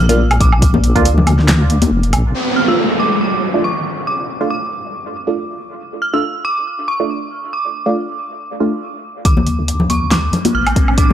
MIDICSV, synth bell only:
0, 0, Header, 1, 2, 480
1, 0, Start_track
1, 0, Key_signature, -1, "minor"
1, 0, Tempo, 431655
1, 688, Time_signature, 4, 2, 24, 8
1, 12378, End_track
2, 0, Start_track
2, 0, Title_t, "Synth bell"
2, 0, Program_c, 0, 98
2, 0, Note_on_c, 0, 89, 114
2, 456, Note_on_c, 0, 86, 94
2, 466, Note_off_c, 0, 89, 0
2, 2088, Note_off_c, 0, 86, 0
2, 2851, Note_on_c, 0, 89, 90
2, 2910, Note_off_c, 0, 89, 0
2, 2984, Note_on_c, 0, 88, 97
2, 3331, Note_on_c, 0, 86, 93
2, 3340, Note_off_c, 0, 88, 0
2, 3556, Note_off_c, 0, 86, 0
2, 3570, Note_on_c, 0, 86, 90
2, 4050, Note_on_c, 0, 85, 82
2, 4063, Note_off_c, 0, 86, 0
2, 4528, Note_on_c, 0, 86, 82
2, 4544, Note_off_c, 0, 85, 0
2, 4974, Note_off_c, 0, 86, 0
2, 5009, Note_on_c, 0, 86, 74
2, 6164, Note_off_c, 0, 86, 0
2, 6692, Note_on_c, 0, 89, 91
2, 6823, Note_on_c, 0, 88, 100
2, 6827, Note_off_c, 0, 89, 0
2, 7169, Note_on_c, 0, 86, 98
2, 7180, Note_off_c, 0, 88, 0
2, 7651, Note_on_c, 0, 85, 90
2, 7663, Note_off_c, 0, 86, 0
2, 8325, Note_off_c, 0, 85, 0
2, 8374, Note_on_c, 0, 86, 79
2, 9767, Note_off_c, 0, 86, 0
2, 10290, Note_on_c, 0, 86, 90
2, 11008, Note_on_c, 0, 85, 93
2, 11031, Note_off_c, 0, 86, 0
2, 11250, Note_on_c, 0, 86, 100
2, 11256, Note_off_c, 0, 85, 0
2, 11729, Note_on_c, 0, 89, 99
2, 11743, Note_off_c, 0, 86, 0
2, 12175, Note_off_c, 0, 89, 0
2, 12208, Note_on_c, 0, 86, 95
2, 12378, Note_off_c, 0, 86, 0
2, 12378, End_track
0, 0, End_of_file